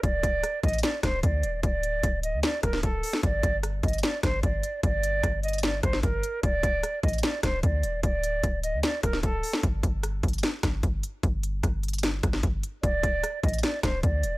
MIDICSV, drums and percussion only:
0, 0, Header, 1, 2, 480
1, 0, Start_track
1, 0, Tempo, 400000
1, 41, Time_signature, 4, 2, 24, 8
1, 17254, End_track
2, 0, Start_track
2, 0, Title_t, "Drums"
2, 42, Note_on_c, 9, 36, 111
2, 42, Note_on_c, 9, 42, 75
2, 162, Note_off_c, 9, 36, 0
2, 162, Note_off_c, 9, 42, 0
2, 281, Note_on_c, 9, 36, 99
2, 282, Note_on_c, 9, 42, 78
2, 401, Note_off_c, 9, 36, 0
2, 402, Note_off_c, 9, 42, 0
2, 521, Note_on_c, 9, 37, 73
2, 523, Note_on_c, 9, 42, 86
2, 641, Note_off_c, 9, 37, 0
2, 643, Note_off_c, 9, 42, 0
2, 761, Note_on_c, 9, 42, 45
2, 762, Note_on_c, 9, 36, 96
2, 821, Note_off_c, 9, 42, 0
2, 821, Note_on_c, 9, 42, 56
2, 881, Note_off_c, 9, 42, 0
2, 881, Note_on_c, 9, 42, 65
2, 882, Note_off_c, 9, 36, 0
2, 942, Note_off_c, 9, 42, 0
2, 942, Note_on_c, 9, 42, 78
2, 999, Note_off_c, 9, 42, 0
2, 999, Note_on_c, 9, 42, 76
2, 1001, Note_on_c, 9, 38, 112
2, 1119, Note_off_c, 9, 42, 0
2, 1121, Note_off_c, 9, 38, 0
2, 1240, Note_on_c, 9, 37, 89
2, 1240, Note_on_c, 9, 38, 89
2, 1240, Note_on_c, 9, 42, 84
2, 1242, Note_on_c, 9, 36, 92
2, 1360, Note_off_c, 9, 37, 0
2, 1360, Note_off_c, 9, 38, 0
2, 1360, Note_off_c, 9, 42, 0
2, 1362, Note_off_c, 9, 36, 0
2, 1479, Note_on_c, 9, 42, 72
2, 1480, Note_on_c, 9, 36, 91
2, 1599, Note_off_c, 9, 42, 0
2, 1600, Note_off_c, 9, 36, 0
2, 1721, Note_on_c, 9, 42, 69
2, 1841, Note_off_c, 9, 42, 0
2, 1961, Note_on_c, 9, 36, 113
2, 1961, Note_on_c, 9, 42, 72
2, 2081, Note_off_c, 9, 36, 0
2, 2081, Note_off_c, 9, 42, 0
2, 2201, Note_on_c, 9, 42, 75
2, 2321, Note_off_c, 9, 42, 0
2, 2442, Note_on_c, 9, 36, 94
2, 2442, Note_on_c, 9, 42, 89
2, 2562, Note_off_c, 9, 36, 0
2, 2562, Note_off_c, 9, 42, 0
2, 2681, Note_on_c, 9, 42, 77
2, 2801, Note_off_c, 9, 42, 0
2, 2918, Note_on_c, 9, 42, 75
2, 2920, Note_on_c, 9, 38, 112
2, 3038, Note_off_c, 9, 42, 0
2, 3040, Note_off_c, 9, 38, 0
2, 3159, Note_on_c, 9, 37, 89
2, 3159, Note_on_c, 9, 42, 85
2, 3162, Note_on_c, 9, 36, 94
2, 3278, Note_on_c, 9, 38, 63
2, 3279, Note_off_c, 9, 37, 0
2, 3279, Note_off_c, 9, 42, 0
2, 3282, Note_off_c, 9, 36, 0
2, 3398, Note_off_c, 9, 38, 0
2, 3399, Note_on_c, 9, 42, 71
2, 3400, Note_on_c, 9, 36, 88
2, 3519, Note_off_c, 9, 42, 0
2, 3520, Note_off_c, 9, 36, 0
2, 3641, Note_on_c, 9, 46, 68
2, 3761, Note_off_c, 9, 46, 0
2, 3761, Note_on_c, 9, 38, 88
2, 3880, Note_on_c, 9, 42, 73
2, 3881, Note_off_c, 9, 38, 0
2, 3881, Note_on_c, 9, 36, 108
2, 4000, Note_off_c, 9, 42, 0
2, 4001, Note_off_c, 9, 36, 0
2, 4120, Note_on_c, 9, 36, 97
2, 4121, Note_on_c, 9, 42, 77
2, 4240, Note_off_c, 9, 36, 0
2, 4241, Note_off_c, 9, 42, 0
2, 4360, Note_on_c, 9, 37, 76
2, 4362, Note_on_c, 9, 42, 85
2, 4480, Note_off_c, 9, 37, 0
2, 4482, Note_off_c, 9, 42, 0
2, 4601, Note_on_c, 9, 36, 91
2, 4601, Note_on_c, 9, 42, 46
2, 4661, Note_off_c, 9, 42, 0
2, 4661, Note_on_c, 9, 42, 57
2, 4721, Note_off_c, 9, 36, 0
2, 4721, Note_off_c, 9, 42, 0
2, 4721, Note_on_c, 9, 42, 68
2, 4781, Note_off_c, 9, 42, 0
2, 4781, Note_on_c, 9, 42, 75
2, 4839, Note_off_c, 9, 42, 0
2, 4839, Note_on_c, 9, 42, 74
2, 4841, Note_on_c, 9, 38, 109
2, 4959, Note_off_c, 9, 42, 0
2, 4961, Note_off_c, 9, 38, 0
2, 5080, Note_on_c, 9, 37, 88
2, 5080, Note_on_c, 9, 38, 88
2, 5080, Note_on_c, 9, 42, 82
2, 5082, Note_on_c, 9, 36, 93
2, 5200, Note_off_c, 9, 37, 0
2, 5200, Note_off_c, 9, 38, 0
2, 5200, Note_off_c, 9, 42, 0
2, 5202, Note_off_c, 9, 36, 0
2, 5319, Note_on_c, 9, 42, 74
2, 5320, Note_on_c, 9, 36, 92
2, 5439, Note_off_c, 9, 42, 0
2, 5440, Note_off_c, 9, 36, 0
2, 5561, Note_on_c, 9, 42, 69
2, 5681, Note_off_c, 9, 42, 0
2, 5801, Note_on_c, 9, 36, 111
2, 5801, Note_on_c, 9, 42, 74
2, 5921, Note_off_c, 9, 36, 0
2, 5921, Note_off_c, 9, 42, 0
2, 6042, Note_on_c, 9, 42, 77
2, 6162, Note_off_c, 9, 42, 0
2, 6281, Note_on_c, 9, 37, 77
2, 6282, Note_on_c, 9, 36, 99
2, 6282, Note_on_c, 9, 42, 88
2, 6401, Note_off_c, 9, 37, 0
2, 6402, Note_off_c, 9, 36, 0
2, 6402, Note_off_c, 9, 42, 0
2, 6521, Note_on_c, 9, 42, 46
2, 6581, Note_off_c, 9, 42, 0
2, 6581, Note_on_c, 9, 42, 57
2, 6641, Note_off_c, 9, 42, 0
2, 6641, Note_on_c, 9, 42, 65
2, 6701, Note_off_c, 9, 42, 0
2, 6701, Note_on_c, 9, 42, 76
2, 6758, Note_off_c, 9, 42, 0
2, 6758, Note_on_c, 9, 42, 75
2, 6760, Note_on_c, 9, 38, 110
2, 6878, Note_off_c, 9, 42, 0
2, 6880, Note_off_c, 9, 38, 0
2, 7000, Note_on_c, 9, 37, 92
2, 7000, Note_on_c, 9, 42, 84
2, 7002, Note_on_c, 9, 36, 94
2, 7119, Note_on_c, 9, 38, 66
2, 7120, Note_off_c, 9, 37, 0
2, 7120, Note_off_c, 9, 42, 0
2, 7122, Note_off_c, 9, 36, 0
2, 7239, Note_off_c, 9, 38, 0
2, 7239, Note_on_c, 9, 42, 74
2, 7240, Note_on_c, 9, 36, 94
2, 7359, Note_off_c, 9, 42, 0
2, 7360, Note_off_c, 9, 36, 0
2, 7481, Note_on_c, 9, 42, 72
2, 7601, Note_off_c, 9, 42, 0
2, 7720, Note_on_c, 9, 42, 73
2, 7721, Note_on_c, 9, 36, 117
2, 7840, Note_off_c, 9, 42, 0
2, 7841, Note_off_c, 9, 36, 0
2, 7960, Note_on_c, 9, 36, 98
2, 7961, Note_on_c, 9, 42, 77
2, 8080, Note_off_c, 9, 36, 0
2, 8081, Note_off_c, 9, 42, 0
2, 8201, Note_on_c, 9, 37, 76
2, 8202, Note_on_c, 9, 42, 89
2, 8321, Note_off_c, 9, 37, 0
2, 8322, Note_off_c, 9, 42, 0
2, 8441, Note_on_c, 9, 42, 46
2, 8442, Note_on_c, 9, 36, 90
2, 8501, Note_off_c, 9, 42, 0
2, 8501, Note_on_c, 9, 42, 56
2, 8561, Note_off_c, 9, 42, 0
2, 8561, Note_on_c, 9, 42, 65
2, 8562, Note_off_c, 9, 36, 0
2, 8620, Note_off_c, 9, 42, 0
2, 8620, Note_on_c, 9, 42, 75
2, 8678, Note_off_c, 9, 42, 0
2, 8678, Note_on_c, 9, 42, 77
2, 8680, Note_on_c, 9, 38, 114
2, 8798, Note_off_c, 9, 42, 0
2, 8800, Note_off_c, 9, 38, 0
2, 8919, Note_on_c, 9, 42, 82
2, 8920, Note_on_c, 9, 37, 90
2, 8920, Note_on_c, 9, 38, 88
2, 8922, Note_on_c, 9, 36, 94
2, 9039, Note_off_c, 9, 42, 0
2, 9040, Note_off_c, 9, 37, 0
2, 9040, Note_off_c, 9, 38, 0
2, 9042, Note_off_c, 9, 36, 0
2, 9159, Note_on_c, 9, 42, 73
2, 9160, Note_on_c, 9, 36, 88
2, 9279, Note_off_c, 9, 42, 0
2, 9280, Note_off_c, 9, 36, 0
2, 9401, Note_on_c, 9, 42, 71
2, 9521, Note_off_c, 9, 42, 0
2, 9641, Note_on_c, 9, 36, 112
2, 9641, Note_on_c, 9, 42, 72
2, 9761, Note_off_c, 9, 36, 0
2, 9761, Note_off_c, 9, 42, 0
2, 9882, Note_on_c, 9, 42, 77
2, 10002, Note_off_c, 9, 42, 0
2, 10122, Note_on_c, 9, 36, 98
2, 10122, Note_on_c, 9, 42, 86
2, 10242, Note_off_c, 9, 36, 0
2, 10242, Note_off_c, 9, 42, 0
2, 10362, Note_on_c, 9, 42, 76
2, 10482, Note_off_c, 9, 42, 0
2, 10599, Note_on_c, 9, 42, 76
2, 10601, Note_on_c, 9, 38, 113
2, 10719, Note_off_c, 9, 42, 0
2, 10721, Note_off_c, 9, 38, 0
2, 10840, Note_on_c, 9, 42, 85
2, 10841, Note_on_c, 9, 37, 88
2, 10842, Note_on_c, 9, 36, 95
2, 10960, Note_off_c, 9, 42, 0
2, 10960, Note_on_c, 9, 38, 66
2, 10961, Note_off_c, 9, 37, 0
2, 10962, Note_off_c, 9, 36, 0
2, 11079, Note_on_c, 9, 42, 75
2, 11080, Note_off_c, 9, 38, 0
2, 11080, Note_on_c, 9, 36, 92
2, 11199, Note_off_c, 9, 42, 0
2, 11200, Note_off_c, 9, 36, 0
2, 11321, Note_on_c, 9, 46, 68
2, 11441, Note_off_c, 9, 46, 0
2, 11441, Note_on_c, 9, 38, 91
2, 11561, Note_off_c, 9, 38, 0
2, 11561, Note_on_c, 9, 36, 112
2, 11561, Note_on_c, 9, 42, 75
2, 11681, Note_off_c, 9, 36, 0
2, 11681, Note_off_c, 9, 42, 0
2, 11800, Note_on_c, 9, 36, 97
2, 11801, Note_on_c, 9, 42, 80
2, 11920, Note_off_c, 9, 36, 0
2, 11921, Note_off_c, 9, 42, 0
2, 12041, Note_on_c, 9, 37, 73
2, 12042, Note_on_c, 9, 42, 86
2, 12161, Note_off_c, 9, 37, 0
2, 12162, Note_off_c, 9, 42, 0
2, 12281, Note_on_c, 9, 36, 96
2, 12281, Note_on_c, 9, 42, 46
2, 12341, Note_off_c, 9, 42, 0
2, 12341, Note_on_c, 9, 42, 55
2, 12401, Note_off_c, 9, 36, 0
2, 12401, Note_off_c, 9, 42, 0
2, 12401, Note_on_c, 9, 42, 66
2, 12460, Note_off_c, 9, 42, 0
2, 12460, Note_on_c, 9, 42, 77
2, 12518, Note_off_c, 9, 42, 0
2, 12518, Note_on_c, 9, 42, 74
2, 12520, Note_on_c, 9, 38, 114
2, 12638, Note_off_c, 9, 42, 0
2, 12640, Note_off_c, 9, 38, 0
2, 12759, Note_on_c, 9, 42, 85
2, 12760, Note_on_c, 9, 37, 89
2, 12760, Note_on_c, 9, 38, 88
2, 12762, Note_on_c, 9, 36, 93
2, 12879, Note_off_c, 9, 42, 0
2, 12880, Note_off_c, 9, 37, 0
2, 12880, Note_off_c, 9, 38, 0
2, 12882, Note_off_c, 9, 36, 0
2, 12999, Note_on_c, 9, 42, 73
2, 13000, Note_on_c, 9, 36, 94
2, 13119, Note_off_c, 9, 42, 0
2, 13120, Note_off_c, 9, 36, 0
2, 13241, Note_on_c, 9, 42, 70
2, 13361, Note_off_c, 9, 42, 0
2, 13481, Note_on_c, 9, 36, 112
2, 13481, Note_on_c, 9, 42, 71
2, 13601, Note_off_c, 9, 36, 0
2, 13601, Note_off_c, 9, 42, 0
2, 13721, Note_on_c, 9, 42, 79
2, 13841, Note_off_c, 9, 42, 0
2, 13961, Note_on_c, 9, 37, 76
2, 13962, Note_on_c, 9, 36, 96
2, 13962, Note_on_c, 9, 42, 84
2, 14081, Note_off_c, 9, 37, 0
2, 14082, Note_off_c, 9, 36, 0
2, 14082, Note_off_c, 9, 42, 0
2, 14201, Note_on_c, 9, 42, 47
2, 14261, Note_off_c, 9, 42, 0
2, 14261, Note_on_c, 9, 42, 57
2, 14321, Note_off_c, 9, 42, 0
2, 14321, Note_on_c, 9, 42, 67
2, 14382, Note_off_c, 9, 42, 0
2, 14382, Note_on_c, 9, 42, 79
2, 14438, Note_off_c, 9, 42, 0
2, 14438, Note_on_c, 9, 42, 74
2, 14441, Note_on_c, 9, 38, 109
2, 14558, Note_off_c, 9, 42, 0
2, 14561, Note_off_c, 9, 38, 0
2, 14680, Note_on_c, 9, 42, 83
2, 14681, Note_on_c, 9, 37, 90
2, 14682, Note_on_c, 9, 36, 94
2, 14800, Note_off_c, 9, 42, 0
2, 14800, Note_on_c, 9, 38, 68
2, 14801, Note_off_c, 9, 37, 0
2, 14802, Note_off_c, 9, 36, 0
2, 14919, Note_on_c, 9, 42, 73
2, 14920, Note_off_c, 9, 38, 0
2, 14921, Note_on_c, 9, 36, 94
2, 15039, Note_off_c, 9, 42, 0
2, 15041, Note_off_c, 9, 36, 0
2, 15162, Note_on_c, 9, 42, 70
2, 15282, Note_off_c, 9, 42, 0
2, 15402, Note_on_c, 9, 36, 112
2, 15402, Note_on_c, 9, 42, 76
2, 15522, Note_off_c, 9, 36, 0
2, 15522, Note_off_c, 9, 42, 0
2, 15641, Note_on_c, 9, 36, 99
2, 15642, Note_on_c, 9, 42, 79
2, 15761, Note_off_c, 9, 36, 0
2, 15762, Note_off_c, 9, 42, 0
2, 15882, Note_on_c, 9, 37, 75
2, 15883, Note_on_c, 9, 42, 89
2, 16002, Note_off_c, 9, 37, 0
2, 16003, Note_off_c, 9, 42, 0
2, 16122, Note_on_c, 9, 36, 91
2, 16122, Note_on_c, 9, 42, 45
2, 16182, Note_off_c, 9, 42, 0
2, 16182, Note_on_c, 9, 42, 55
2, 16242, Note_off_c, 9, 36, 0
2, 16242, Note_off_c, 9, 42, 0
2, 16242, Note_on_c, 9, 42, 66
2, 16302, Note_off_c, 9, 42, 0
2, 16302, Note_on_c, 9, 42, 74
2, 16359, Note_off_c, 9, 42, 0
2, 16359, Note_on_c, 9, 42, 78
2, 16361, Note_on_c, 9, 38, 109
2, 16479, Note_off_c, 9, 42, 0
2, 16481, Note_off_c, 9, 38, 0
2, 16600, Note_on_c, 9, 42, 82
2, 16601, Note_on_c, 9, 37, 89
2, 16601, Note_on_c, 9, 38, 87
2, 16603, Note_on_c, 9, 36, 98
2, 16720, Note_off_c, 9, 42, 0
2, 16721, Note_off_c, 9, 37, 0
2, 16721, Note_off_c, 9, 38, 0
2, 16723, Note_off_c, 9, 36, 0
2, 16840, Note_on_c, 9, 42, 73
2, 16841, Note_on_c, 9, 36, 95
2, 16960, Note_off_c, 9, 42, 0
2, 16961, Note_off_c, 9, 36, 0
2, 17081, Note_on_c, 9, 42, 70
2, 17201, Note_off_c, 9, 42, 0
2, 17254, End_track
0, 0, End_of_file